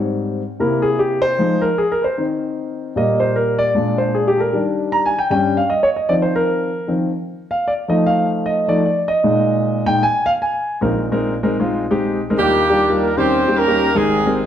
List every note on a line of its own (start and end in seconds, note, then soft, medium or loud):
0.00 0.40 G#2 medium
0.00 0.41 G3 soft
0.00 0.41 C4 medium
0.60 1.35 C3 medium
0.60 1.35 A#3 soft
0.60 1.35 E4 medium
0.60 0.84 A#4 medium
0.82 1.00 G#4 medium
0.99 1.23 G4 medium
1.22 1.63 C5 loud
1.39 1.67 F3 medium
1.39 1.67 G#3 soft
1.39 1.67 D#4 medium
1.62 1.79 A#4 medium
1.78 1.92 G#4 medium
1.92 2.03 A#4 medium
2.02 2.04 B4 medium
2.02 2.24 C5 medium
2.18 2.92 D#3 soft
2.18 2.92 C4 soft
2.18 2.93 D#4 medium
2.96 3.71 A#2 medium
2.96 3.71 G3 soft
2.96 3.71 A#3 medium
2.96 3.20 D#5 medium
3.20 3.35 C5 medium
3.36 3.57 A#4 medium
3.59 3.99 D5 loud
3.74 4.49 A#2 medium
3.74 4.49 G#3 soft
3.74 4.50 D4 medium
3.98 4.15 C5 medium
4.15 4.28 G#4 medium
4.28 4.39 G4 medium
4.38 4.40 A4 medium
4.38 4.59 A#4 medium
4.53 5.12 D#3 soft
4.53 5.12 G3 soft
4.53 5.12 D4 medium
4.92 5.06 A#5 medium
5.06 5.19 G#5 medium
5.19 5.30 G5 medium
5.30 5.59 G2 medium
5.30 5.59 G3 soft
5.30 5.59 C#4 medium
5.30 5.56 G5 medium
5.57 5.71 F5 medium
5.70 5.84 D#5 medium
5.83 5.88 C#5 medium
5.96 6.10 D#5 medium
6.09 6.68 D#3 medium
6.09 6.68 F3 soft
6.09 6.69 C4 medium
6.09 6.14 D5 medium
6.22 6.36 C5 medium
6.36 6.92 A#4 medium
6.87 7.08 D#3 soft
6.87 7.09 F3 soft
6.87 7.09 C4 medium
7.51 7.68 F5 medium
7.68 7.73 D5 medium
7.88 8.66 F3 medium
7.88 8.67 A3 soft
7.88 8.67 D#4 medium
7.88 8.07 D#5 medium
8.06 8.28 F5 medium
8.46 8.69 D#5 medium
8.68 8.83 F3 medium
8.68 8.83 A3 soft
8.68 8.84 D#4 medium
8.68 8.84 D5 medium
8.85 9.09 D5 medium
9.08 9.89 D#5 medium
9.24 9.83 A#2 medium
9.24 9.83 G#3 medium
9.24 9.83 D#4 medium
9.86 10.01 A#2 soft
9.86 10.01 G#3 soft
9.86 10.01 D#4 medium
9.86 10.04 G5 loud
10.03 10.24 G#5 loud
10.26 10.31 F5 loud
10.42 10.79 G#5 medium
10.81 12.35 A#1 medium
10.81 12.35 A#2 medium
10.81 11.05 G#3 medium
10.81 11.05 C4 medium
10.81 11.05 D#4 medium
10.81 11.05 A#4 medium
11.12 11.33 G#3 medium
11.12 11.33 C4 medium
11.12 11.33 D#4 medium
11.12 11.33 A#4 loud
11.43 11.55 G#3 medium
11.43 11.55 C4 medium
11.43 11.55 D#4 medium
11.43 11.55 A#4 loud
11.60 11.83 G#3 medium
11.60 11.83 C4 medium
11.60 11.83 D#4 medium
11.60 11.84 F4 medium
11.91 12.19 G#3 medium
11.91 12.19 C4 medium
11.91 12.19 D#4 medium
11.91 12.19 G4 loud
12.30 12.36 G#3 medium
12.30 12.36 C4 medium
12.30 12.36 D#4 medium
12.30 12.36 A#4 medium
12.38 13.13 D#2 medium
12.38 13.13 D#3 medium
12.38 12.62 G3 medium
12.38 12.97 G3 medium
12.38 13.01 A#3 medium
12.38 12.62 D4 medium
12.38 13.13 D4 medium
12.38 12.62 D#4 medium
12.38 12.62 F4 medium
12.38 12.97 G4 medium
12.38 12.62 A#4 medium
12.70 12.82 G3 medium
12.70 12.82 D4 medium
12.70 12.82 D#4 medium
12.70 12.82 F4 medium
12.70 12.82 G4 medium
12.89 13.09 G3 medium
12.89 13.09 D4 medium
12.89 13.09 D#4 medium
12.89 13.10 F4 medium
12.89 13.10 A#4 medium
13.01 13.17 A#3 medium
13.01 13.17 A#4 medium
13.17 13.92 D#2 medium
13.17 13.92 D#3 medium
13.17 13.40 G3 medium
13.17 13.40 A#3 medium
13.17 13.57 C4 loud
13.17 13.40 C#4 medium
13.17 13.41 D#4 medium
13.17 13.56 G4 medium
13.17 13.41 A#4 medium
13.17 13.57 C5 loud
13.48 13.61 G3 medium
13.48 13.61 A#3 medium
13.48 13.61 C#4 medium
13.48 13.61 D#4 medium
13.48 13.61 G4 medium
13.57 13.96 A#3 medium
13.57 13.93 C#4 medium
13.57 13.93 G4 medium
13.57 13.96 A#4 medium
13.67 13.88 G3 medium
13.67 13.88 A#3 medium
13.67 13.88 C#4 medium
13.67 13.88 D#4 medium
13.67 13.88 G4 medium
13.95 14.46 G#1 medium
13.95 14.46 G#2 medium
13.95 14.18 G#3 medium
13.95 14.36 G#3 medium
13.95 14.19 C4 medium
13.95 14.46 C4 medium
13.95 14.19 D#4 medium
13.95 14.46 D#4 medium
13.95 14.19 G4 medium
13.95 14.36 G#4 loud
13.95 14.19 A#4 medium
14.26 14.39 G#3 medium
14.26 14.39 C4 medium
14.26 14.39 D#4 medium
14.26 14.39 G4 medium
14.26 14.39 A#4 medium